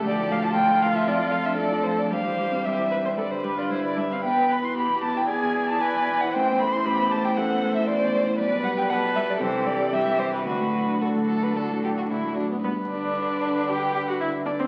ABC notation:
X:1
M:4/4
L:1/16
Q:1/4=115
K:Gmix
V:1 name="Violin"
d2 f a g2 f e d2 f e d2 c d | f4 e4 d c B d c d e f | [K:G] g2 b c' b2 a g ^g3 a g3 f | g2 b c' b2 a g f3 e d3 c |
d2 f g f2 e d c2 d2 e2 c B | B4 A8- A2 z2 | B2 d6 g3 f e2 d c |]
V:2 name="Violin"
A16 | c8 B8- | [K:G] B8 d8 | c16 |
B4 A4 G4 G4 | F4 F2 A B A2 G F E2 D B, | B16 |]
V:3 name="Viola"
G4 F8 A4 | G4 G2 B c A2 G F E2 D C | [K:G] B4 G4 ^G4 B4 | c4 G4 A4 c4 |
B4 B4 A4 G4 | F12- F2 z2 | B,2 D6 G3 F E2 D C |]
V:4 name="Grand piano" clef=bass
D,, A,, A, F D,, A,, A, F F,, F, A, D F,, F, A, D | G,, E, G, C G,, E, G, C G,, D, G, D G,, D, G, D | [K:G] E,, B,, B, E E,, B,, B, E E,, B,, B, E E,, B,, B, E | A,,, E,, A, E A,,, E,, A, E A,,, E,, A, E A,,, E,, A, E |
B,,, B,, G, G B,,, B,, G, G C,, G,, G, G C,, G,, G, G | D,, A,, F, D D,, A,, F, D D,, A,, F, D D,, A,, F, D | G,,2 D2 D,2 D2 D,2 D2 D,2 D2 |]
V:5 name="Cello" clef=bass
F,16 | G,12- G,2 z2 | [K:G] E,16- | E,16 |
G,8 E,4 E,4 | D,4 D,8- D,2 z2 | D,16 |]